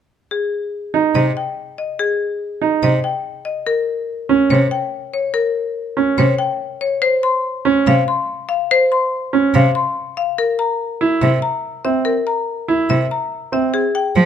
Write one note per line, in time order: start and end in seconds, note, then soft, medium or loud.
0.31 0.58 G#4 medium
0.94 1.21 D#4 medium
1.15 1.31 C3 soft
1.15 1.42 D#5 soft
1.37 1.64 G5 soft
1.78 2.05 D#5 soft
1.99 2.26 G#4 medium
2.61 2.89 D#4 medium
2.83 2.99 C3 soft
2.83 3.10 D#5 soft
3.04 3.31 G5 soft
3.45 3.73 D#5 soft
3.67 3.94 A#4 medium
4.29 4.57 C#4 medium
4.50 4.66 C3 medium
4.50 4.78 C#5 soft
4.71 4.99 G5 soft
5.14 5.41 C#5 soft
5.34 5.62 A#4 medium
5.97 6.24 C#4 medium
6.18 6.34 C3 medium
6.18 6.46 C#5 medium
6.38 6.66 G5 soft
6.81 7.09 C#5 medium
7.02 7.29 C5 medium
7.23 7.51 C6 medium
7.65 7.93 C#4 medium
7.87 8.02 C3 medium
7.87 8.14 F5 medium
8.08 8.35 C6 soft
8.49 8.76 F5 medium
8.71 8.98 C5 medium
8.92 9.19 C6 soft
9.33 9.60 C#4 medium
9.54 9.70 C3 medium
9.54 9.82 F5 medium
9.75 10.02 C6 soft
10.17 10.44 F5 medium
10.38 10.65 A#4 medium
10.59 10.86 A#5 soft
11.01 11.28 E4 medium
11.21 11.38 C3 soft
11.21 11.49 E5 soft
11.42 11.70 A#5 soft
11.85 12.12 C4 soft
11.85 12.12 E5 soft
12.05 12.33 A#4 medium
12.27 12.54 A#5 soft
12.68 12.96 E4 medium
12.90 13.06 C3 soft
12.90 13.17 E5 soft
13.11 13.38 A#5 soft
13.52 13.80 C4 soft
13.52 13.80 E5 soft
13.74 14.01 G#4 medium
13.95 14.22 G5 soft
14.16 14.26 F3 medium